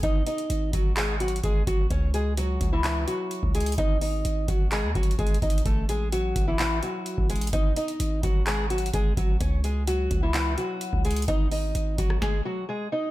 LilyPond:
<<
  \new Staff \with { instrumentName = "Steel-string acoustic guitar" } { \time 4/4 \key cis \minor \tempo 4 = 128 <dis' dis''>8 <dis' dis''>4 <fis fis'>8 <gis gis'>8 <fis fis'>8 <gis gis'>8 <fis fis'>8 | <cis' cis''>8 <gis gis'>8 <fis fis'>8. <e e'>16 <e e'>8 <fis fis'>4 <gis gis'>8 | <dis' dis''>8 <dis' dis''>4 <fis fis'>8 <gis gis'>8 <fis fis'>8 <gis gis'>8 <dis' dis''>8 | <a a'>8 <gis gis'>8 <fis fis'>8. <e e'>16 <e e'>8 <fis fis'>4 <gis gis'>8 |
<dis' dis''>8 <dis' dis''>4 <fis fis'>8 <gis gis'>8 <fis fis'>8 <gis gis'>8 <fis fis'>8 | <cis' cis''>8 <gis gis'>8 <fis fis'>8. <e e'>16 <e e'>8 <fis fis'>4 <gis gis'>8 | <dis' dis''>8 <dis' dis''>4 <fis fis'>8 <gis gis'>8 <fis fis'>8 <gis gis'>8 <dis' dis''>8 | }
  \new Staff \with { instrumentName = "808-style bass" } { \clef bass \time 4/4 \key cis \minor gis,,8 r8 gis,,8 gis,,4. gis,,8 gis,,8 | cis,4. cis,4 r8. cis,8. | gis,,4 gis,,8 gis,,8. dis,16 gis,,8 gis,,8 gis,,8 | a,,4. a,,4 r8. a,,8. |
gis,,8 r8 gis,,8 gis,,4. gis,,8 gis,,8 | cis,4. cis,4 r8. cis,8. | gis,,4 gis,,8 gis,,8 r2 | }
  \new DrumStaff \with { instrumentName = "Drums" } \drummode { \time 4/4 <hh bd>8 <hh hho>16 hh16 hh8 <hh bd>8 \tuplet 3/2 { <hc hh>16 r16 r16 hh16 hh16 hh16 } <hh bd>8 <hh bd>8 | <hh bd>8 hh8 hh8 <hh bd>8 <hc hh>8 hh8 hh16 bd16 hh32 hh32 hh32 hh32 | <hh bd>8 hho8 hh8 <hh bd>8 \tuplet 3/2 { <hc hh>16 r16 r16 <hh bd>16 hh16 hh16 <hh bd>16 hh16 hh16 <hh bd>16 hh16 hh16 } | <hh bd>8 hh8 hh8 <hh bd>8 <hc hh>8 hh8 hh16 bd16 hh32 hh32 hh32 hh32 |
<hh bd>8 <hh hho>16 hh16 hh8 <hh bd>8 \tuplet 3/2 { <hc hh>16 r16 r16 hh16 hh16 hh16 } <hh bd>8 <hh bd>8 | <hh bd>8 hh8 hh8 <hh bd>8 <hc hh>8 hh8 hh16 bd16 hh32 hh32 hh32 hh32 | <hh bd>8 hho8 hh8 <hh bd>16 ss16 <bd sn>4 r4 | }
>>